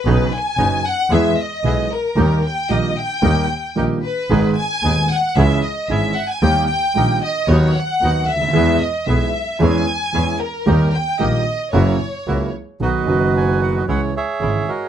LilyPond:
<<
  \new Staff \with { instrumentName = "Violin section" } { \time 4/4 \key dis \phrygian \tempo 4 = 113 b'8 gis''4 fis''8 e''8 dis''4 ais'8~ | ais'8 g''8 dis''8 g''4. r8 b'8~ | b'8 gis''4 fis''8 e''8 dis''8 e''8 fis''16 gis''16 | g''8 g''4 dis''8 cis''8 fis''4 e''8~ |
e''8 dis''8 e''4 gis''4. ais'8~ | ais'8 g''8 dis''4 cis''4. r8 | \key b \major r1 | }
  \new Staff \with { instrumentName = "Bandoneon" } { \time 4/4 \key dis \phrygian << { r1 | r1 | r1 | r1 |
r1 | r1 | \key b \major dis''4 gis''8 fis''16 dis''16 fis''8 e''4 dis''8 | } \\ { r1 | r1 | r1 | r1 |
r1 | r1 | <fis' b'>2 cis''8 <gis' cis''>4 <fis' ais'>8 | } >> }
  \new Staff \with { instrumentName = "Bandoneon" } { \time 4/4 \key dis \phrygian <b cis' dis'>8 r8 <b cis' dis'>8 r8 <b e' gis'>8 r8 <b e' gis'>8 r8 | <ais dis' g'>8 r8 <ais dis' g'>8 r8 <ais dis' g'>8 r8 <ais dis' g'>8 r8 | <b dis' gis'>8 r8 <b dis' gis'>8 r8 <cis' e' gis'>8 r8 <cis' e' gis'>8 r8 | <ais dis' g'>8 r8 <ais dis' g'>8 r8 <b dis' fis'>8 r8 <b dis' fis'>8 r8 |
<b e' gis'>8 r8 <b e' gis'>8 r8 <cis' e' gis'>8 r8 <cis' e' gis'>8 r8 | <ais dis' g'>8 r8 <ais dis' g'>8 r8 <ais e' fis'>8 r8 <ais e' fis'>8 r8 | \key b \major <b dis' fis'>8 <b dis' fis'>4. <gis cis' e'>8 r8 <gis cis' e'>8 r8 | }
  \new Staff \with { instrumentName = "Grand piano" } { \clef bass \time 4/4 \key dis \phrygian <b,, b, cis fis b dis'>8 r8 <fis,, fis, cis fis b dis'>8 r8 <e, e gis b gis'>8 r8 <b,, b, e gis b gis'>8 r8 | <dis, dis g ais g'>8 r8 <ais,, ais, dis g ais g'>8 r8 <dis, dis g ais g'>8 r8 <ais,, ais, dis g ais g'>8 r8 | <gis,, gis, dis gis b gis'>8 r8 <dis,, dis, dis gis b gis'>8 r8 <cis, cis e gis cis' gis'>8 r8 <gis,, gis, e gis cis' gis'>8 r8 | <dis, dis g ais g'>8 r8 <ais,, ais, dis g ais g'>8 r8 <dis, dis fis b fis'>8 r8 <dis, dis fis b fis'>8 r32 cis,32 d,32 dis,32 |
<e, e gis b gis'>8 r8 <b,, b, e gis b gis'>8 r8 <e, e gis cis' gis'>8 r8 <e, e gis cis' gis'>8 r8 | <dis, dis g ais g'>8 r8 <ais,, ais, dis g ais g'>8 r8 <fis, cis fis ais e'>8 r8 <cis, cis fis ais e'>8 r8 | \key b \major <b,, b, dis fis b fis'>8 <fis,, fis, dis fis b fis'>4. <cis, cis e gis e'>8 r8 <gis,, gis, cis e gis e'>8 r8 | }
  \new Staff \with { instrumentName = "Double bass" } { \clef bass \time 4/4 \key dis \phrygian b,,8 r8 fis,,8 r8 e,8 r8 b,,8 r8 | dis,8 r8 ais,,8 r8 dis,8 r8 ais,,8 r8 | gis,,8 r8 dis,8 r8 cis,8 r8 gis,,8 r8 | dis,8 r8 ais,,8 r8 dis,8 r8 dis,8 d,8 |
e,8 r8 b,,8 r8 e,8 r8 e,8 r8 | dis,8 r8 ais,,8 r8 fis,,8 r8 cis,8 r8 | \key b \major b,,8 fis,,4. cis,8 r8 gis,,8 r8 | }
>>